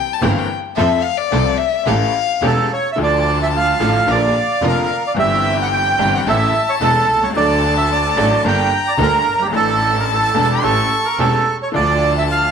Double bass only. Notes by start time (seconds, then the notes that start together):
0.22 G1
0.77 F2
1.32 C2
1.86 A1
2.42 E1
2.96 D2
3.79 A1
4.07 A#1
4.61 F1
5.15 G1
5.98 G1
6.25 A1
6.80 E1
7.08 C2
7.34 D2
8.17 A1
8.43 G1
8.98 D2
9.27 G1
9.53 A1
10.35 E1
10.63 A1
11.19 E1
11.74 D2